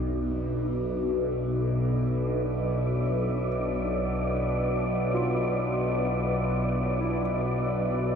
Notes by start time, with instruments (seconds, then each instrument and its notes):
Already playing: synth drone B1 B2, grand piano F2, synth texture D4 D5, ambient pad B4 D5 E5
5.14 grand piano F4
7.01 grand piano E4